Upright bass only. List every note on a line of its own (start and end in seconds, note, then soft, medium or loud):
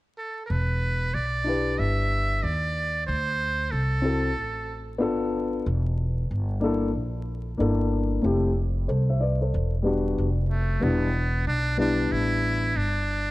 0.50 1.11 E1 medium
1.14 1.76 B1 medium
1.79 2.40 G1 medium
2.44 3.05 D#2 medium
3.08 3.69 D2 medium
3.72 4.37 C2 medium
4.37 5.01 A1 medium
5.01 5.62 G1 medium
5.66 6.27 E1 medium
6.31 6.95 G1 medium
6.95 7.56 A#1 medium
7.60 8.21 G1 medium
8.24 8.85 F1 medium
8.89 9.50 C2 medium
9.54 10.15 E1 medium
10.18 10.79 F1 medium
10.82 11.43 E1 loud
11.47 12.08 B1 medium
12.11 12.72 A1 medium
12.76 13.31 G1 medium